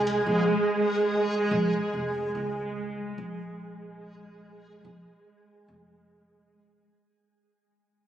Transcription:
0, 0, Header, 1, 5, 480
1, 0, Start_track
1, 0, Tempo, 833333
1, 153, Time_signature, 4, 2, 24, 8
1, 4651, End_track
2, 0, Start_track
2, 0, Title_t, "Synth texture"
2, 0, Program_c, 0, 99
2, 0, Note_on_c, 0, 56, 85
2, 0, Note_on_c, 0, 80, 84
2, 4003, Note_off_c, 0, 56, 0
2, 4006, Note_off_c, 0, 80, 0
2, 4651, End_track
3, 0, Start_track
3, 0, Title_t, "String section"
3, 0, Program_c, 1, 48
3, 0, Note_on_c, 1, 56, 75
3, 4008, Note_off_c, 1, 56, 0
3, 4651, End_track
4, 0, Start_track
4, 0, Title_t, "Upright bass"
4, 0, Program_c, 2, 32
4, 0, Note_on_c, 2, 36, 93
4, 132, Note_off_c, 2, 36, 0
4, 152, Note_on_c, 2, 34, 85
4, 263, Note_off_c, 2, 34, 0
4, 871, Note_on_c, 2, 34, 92
4, 982, Note_off_c, 2, 34, 0
4, 1113, Note_on_c, 2, 29, 70
4, 1326, Note_off_c, 2, 29, 0
4, 1352, Note_on_c, 2, 37, 83
4, 1811, Note_off_c, 2, 37, 0
4, 1831, Note_on_c, 2, 34, 93
4, 2770, Note_off_c, 2, 34, 0
4, 2791, Note_on_c, 2, 34, 87
4, 2902, Note_off_c, 2, 34, 0
4, 3274, Note_on_c, 2, 29, 84
4, 3971, Note_off_c, 2, 29, 0
4, 4651, End_track
5, 0, Start_track
5, 0, Title_t, "Drums"
5, 40, Note_on_c, 9, 42, 44
5, 97, Note_off_c, 9, 42, 0
5, 4651, End_track
0, 0, End_of_file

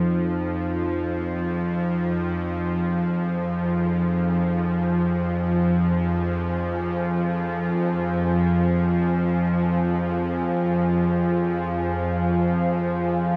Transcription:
0, 0, Header, 1, 4, 480
1, 0, Start_track
1, 0, Key_signature, -4, "minor"
1, 0, Tempo, 500000
1, 12831, End_track
2, 0, Start_track
2, 0, Title_t, "Ambient pad"
2, 0, Program_c, 0, 92
2, 0, Note_on_c, 0, 63, 80
2, 0, Note_on_c, 0, 65, 75
2, 0, Note_on_c, 0, 72, 75
2, 0, Note_on_c, 0, 80, 59
2, 1087, Note_on_c, 0, 77, 79
2, 1188, Note_off_c, 0, 63, 0
2, 12831, Note_off_c, 0, 65, 0
2, 12831, Note_off_c, 0, 72, 0
2, 12831, Note_off_c, 0, 77, 0
2, 12831, Note_off_c, 0, 80, 0
2, 12831, End_track
3, 0, Start_track
3, 0, Title_t, "Singing bowl"
3, 0, Program_c, 1, 14
3, 0, Note_on_c, 1, 63, 52
3, 12831, Note_off_c, 1, 63, 0
3, 12831, End_track
4, 0, Start_track
4, 0, Title_t, "Synth drone"
4, 0, Program_c, 2, 95
4, 0, Note_on_c, 2, 41, 72
4, 0, Note_on_c, 2, 53, 65
4, 12831, Note_off_c, 2, 41, 0
4, 12831, Note_off_c, 2, 53, 0
4, 12831, End_track
0, 0, End_of_file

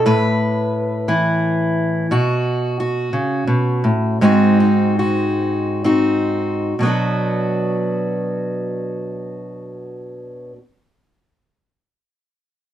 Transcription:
0, 0, Header, 1, 2, 480
1, 0, Start_track
1, 0, Tempo, 683371
1, 37, Time_signature, 6, 3, 24, 8
1, 2438, Tempo, 728155
1, 2918, Tempo, 780234
1, 3398, Tempo, 851064
1, 3878, Tempo, 952381
1, 4358, Tempo, 1000000
1, 7213, End_track
2, 0, Start_track
2, 0, Title_t, "Steel-string acoustic guitar"
2, 0, Program_c, 0, 25
2, 40, Note_on_c, 0, 45, 76
2, 44, Note_on_c, 0, 71, 83
2, 760, Note_on_c, 0, 52, 66
2, 763, Note_on_c, 0, 64, 53
2, 1443, Note_off_c, 0, 45, 0
2, 1448, Note_off_c, 0, 64, 0
2, 1473, Note_off_c, 0, 71, 0
2, 1475, Note_off_c, 0, 52, 0
2, 1482, Note_on_c, 0, 47, 68
2, 1487, Note_on_c, 0, 66, 68
2, 1963, Note_off_c, 0, 66, 0
2, 1966, Note_on_c, 0, 66, 54
2, 2195, Note_off_c, 0, 47, 0
2, 2198, Note_on_c, 0, 49, 61
2, 2437, Note_off_c, 0, 49, 0
2, 2440, Note_on_c, 0, 47, 59
2, 2676, Note_off_c, 0, 47, 0
2, 2680, Note_on_c, 0, 45, 58
2, 2921, Note_off_c, 0, 45, 0
2, 2926, Note_on_c, 0, 44, 71
2, 2930, Note_on_c, 0, 56, 59
2, 2934, Note_on_c, 0, 60, 60
2, 2939, Note_on_c, 0, 63, 55
2, 2940, Note_off_c, 0, 66, 0
2, 2943, Note_on_c, 0, 66, 68
2, 3159, Note_off_c, 0, 63, 0
2, 3166, Note_on_c, 0, 63, 47
2, 3397, Note_off_c, 0, 66, 0
2, 3404, Note_on_c, 0, 66, 52
2, 3879, Note_off_c, 0, 60, 0
2, 3881, Note_off_c, 0, 63, 0
2, 3881, Note_off_c, 0, 66, 0
2, 3885, Note_on_c, 0, 60, 48
2, 3888, Note_on_c, 0, 63, 44
2, 3891, Note_on_c, 0, 66, 55
2, 4332, Note_off_c, 0, 44, 0
2, 4332, Note_off_c, 0, 60, 0
2, 4333, Note_off_c, 0, 56, 0
2, 4333, Note_off_c, 0, 63, 0
2, 4361, Note_on_c, 0, 47, 56
2, 4369, Note_on_c, 0, 54, 51
2, 4379, Note_on_c, 0, 59, 50
2, 4392, Note_on_c, 0, 62, 46
2, 4395, Note_off_c, 0, 66, 0
2, 4400, Note_on_c, 0, 66, 45
2, 6149, Note_off_c, 0, 47, 0
2, 6157, Note_off_c, 0, 54, 0
2, 6167, Note_off_c, 0, 59, 0
2, 6180, Note_off_c, 0, 62, 0
2, 6189, Note_off_c, 0, 66, 0
2, 7213, End_track
0, 0, End_of_file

